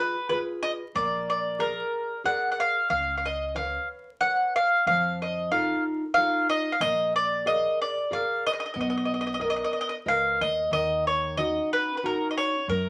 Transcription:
Already playing: F4 G#4 B4
0.00 B4
0.29 F4 G#4 B4
0.63 D#5
0.95 A#1 A#3 D5
1.30 D5
1.59 G#4 A#4 D5
2.24 G#4 A#4 D5 F#5
2.52 F#5
2.60 F5
2.90 C#2 C#4 F5
3.17 F5
3.25 D#5
3.55 B4 C#5 F5
4.21 B4 C#5 F#5
4.56 F5
4.86 F2 F3 F5
5.22 D#5
5.51 D#4 F4 A4 F5
6.14 D#4 F4 A4 F5
6.50 D#5
6.72 F5
6.80 A#1 A#3 D#5
7.16 D5
7.46 G#4 A#4 D#5 F5
7.82 D5
8.11 G#4 A#4 D5 F5
8.46 D#5
8.53 D#5
8.60 D#5
8.66 D#5
8.74 B1 B3 D#5
8.81 D#5
8.90 D#5
8.97 D#5
9.05 D#5
9.14 D#5
9.21 D#5
9.27 D#5
9.34 D#5
9.40 A#4 B4 D#5
9.50 D#5
9.56 D#5
9.64 D#5
9.73 D#5
9.81 D#5
9.89 D#5
10.06 C#2 A#4 B4 D#5 F5
10.41 D#2 D#5
10.71 D#2 D#3 D#5
11.07 C#5
11.37 C#4 D#4 F#4 D#5
11.73 B4
11.97 B4
12.03 C#4 D#4 F#4 A#4
12.31 D#5
12.37 C#5
12.68 F#2 F#3 A#4

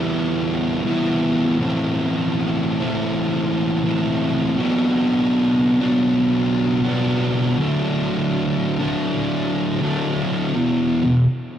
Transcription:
Already playing: E3 G3 B3 E4
0.83 E3 G3 B3
0.87 E4
1.58 A2 E3 A3 C4
1.63 E4
2.80 A2 E3 A3 C4 E4
3.82 A2 E3 A3 C4 E4
4.57 B2 F#3 B3 D4
5.80 B2 F#3 B3 D4
6.82 B2 F#3 B3 D4
7.58 D3 F#3 A3
7.62 D4
8.80 D3 F#3 A3 D4
9.80 D3 F#3 A3 D4
10.54 E2 B2 E3
11.03 E2 B2

